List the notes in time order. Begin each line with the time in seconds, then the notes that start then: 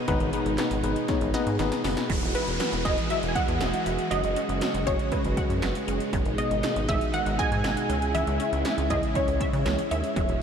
Already playing: B2 G#3 D#4
0.08 G#1 D#3 B3 D#4 G#4 B4, kick, closed hi-hat
0.20 G#1, closed hi-hat
0.33 B3 D#4 G#4 B4, closed hi-hat
0.46 G#1, closed hi-hat
0.58 D#3 B3 D#4 G#4 B4, snare, clap, closed hi-hat
0.71 G#1, closed hi-hat
0.84 G#1 B3 D#4 G#4 B4, closed hi-hat
0.96 closed hi-hat
1.08 B3 D#4 G#4 C#5, kick, snare, closed hi-hat
1.21 G#1, closed hi-hat
1.34 B3 D#4 G#4 B4 D#5, snare, closed hi-hat
1.47 G#2, closed hi-hat
1.59 G#1 D#3 B3 D#4 G#4 B4, snare, closed hi-hat
1.72 snare, closed hi-hat
1.84 F#1 B3 D#4 G#4 B4, snare, open hi-hat
1.97 snare, closed hi-hat
2.09 E1 E3 F#3 G#3 F#4, kick, closed hi-hat, downlifter
2.22 E1, closed hi-hat
2.35 E4 B4, closed hi-hat
2.47 E1, closed hi-hat
2.60 F#3, snare, closed hi-hat
2.73 E1, closed hi-hat
2.85 E1 G#4 D#5, kick, closed hi-hat
2.98 closed hi-hat
3.10 F#3 E5, closed hi-hat
3.23 E1, closed hi-hat
3.28 G#5
3.35 F#5, kick, closed hi-hat
3.48 E2, closed hi-hat
3.61 E1 F#3, snare, closed hi-hat
3.73 closed hi-hat
3.86 E1 E4, closed hi-hat
3.99 closed hi-hat
4.11 F#1 C#3 F#3 D#5, closed hi-hat
4.24 F#1, closed hi-hat
4.36 C#4, closed hi-hat
4.49 F#1, closed hi-hat
4.61 F#3, snare, closed hi-hat
4.74 F#1, closed hi-hat
4.87 F#1 G#4 C#5, kick, closed hi-hat
4.99 closed hi-hat
5.12 F#3 B4, kick, closed hi-hat
5.24 F#1, closed hi-hat
5.37 F#5, kick, closed hi-hat
5.50 F#2, closed hi-hat
5.62 F#1 F#3, snare, closed hi-hat
5.75 closed hi-hat
5.88 F#1 C#4, closed hi-hat
6.00 closed hi-hat
6.13 G#1 B2 D#3 D#4, kick, closed hi-hat
6.25 G#1, closed hi-hat
6.38 B3 D#5, closed hi-hat
6.51 G#1, closed hi-hat
6.63 D#3, snare, closed hi-hat
6.76 G#1, closed hi-hat
6.89 G#1 G#4 E5, kick, closed hi-hat
7.01 closed hi-hat
7.14 D#3 F#5, closed hi-hat
7.26 G#1, closed hi-hat
7.39 D#5 G#5, kick, closed hi-hat
7.52 G#2, closed hi-hat
7.64 G#1 D#3, snare, closed hi-hat
7.77 closed hi-hat
7.89 C#2 C#3 C#4 E4, closed hi-hat
8.02 closed hi-hat
8.15 E3 E5, closed hi-hat
8.27 C#2, closed hi-hat
8.40 C#4, closed hi-hat
8.53 C#2, closed hi-hat
8.65 E3, snare, closed hi-hat
8.78 C#2, closed hi-hat
8.90 C#2 G#4 D#5, kick, closed hi-hat
9.03 closed hi-hat
9.15 E3 C#5, kick, closed hi-hat
9.28 C#2, closed hi-hat
9.41 E5, kick, closed hi-hat
9.53 C#3, closed hi-hat
9.66 C#2 E3, snare, closed hi-hat
9.79 closed hi-hat
9.91 D#2 C#4 E5, closed hi-hat
10.04 closed hi-hat
10.16 E1 E3 F#3 F#4, kick, closed hi-hat
10.29 E1, closed hi-hat